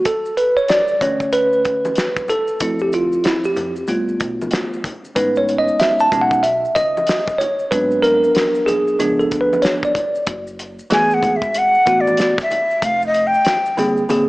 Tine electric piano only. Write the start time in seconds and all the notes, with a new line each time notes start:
0.06 A4
0.37 B4
0.57 C#5
0.70 D5
1.01 D3 A3 C#4 C#5
1.33 B4
2.29 A4
2.61 F3 C4 E4
2.82 G4
2.94 F4
3.25 E4
3.45 G4
3.88 A3 B3 F4
5.15 G#3 B3 C#4 D#4 B4
5.37 C#5
5.58 D#5
5.80 E5
6.00 A5
6.11 G#3 B3 C#4 D#4
6.21 F#5
6.43 E5
6.75 D#5
7.38 C#5
7.71 F#3 B3 D4 B4
8.02 A#4
8.66 G#4
8.99 F3 B3 D4
9.19 A4
9.41 B4
9.62 C#5
9.85 D5
10.90 E3 A3 B3 G#4
11.86 E3 A3 B3 F#4
13.77 D3 A#3 C4 G#4
14.09 D3 A#3 C4 G#4